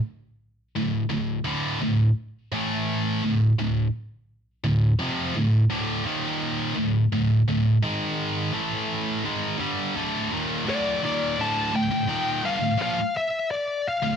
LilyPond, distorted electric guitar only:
\new Staff \with { instrumentName = "Distorted electric guitar" } { \clef bass \time 4/4 \key d \minor \tempo 4 = 85 r4 <d, a,>8 <d, a,>8 <d, a, d>8 <d, a,>8 r8 <a, e a>8~ | <a, e a>8 <d, a,>8 <d, a,>8 r4 <d, a,>8 <f, c f>8 <d, a,>8 | <d, a, d>8 <ees, bes, ees>4 <d, a,>8 <d, a,>8 <d, a,>8 <gis, dis gis>4 | <a, e a>4 <gis, ees gis>8 <g, d g>8 <d, a, d>8 <ees, bes, ees>8 <d, a, d>8 <ees, bes, ees>8 |
<d, a, d>8 <d, a,>16 <d, a,>16 <ees, bes, ees>8 <g, d>16 <d, a,>16 <bes, f>16 r4. <d, a,>16 | }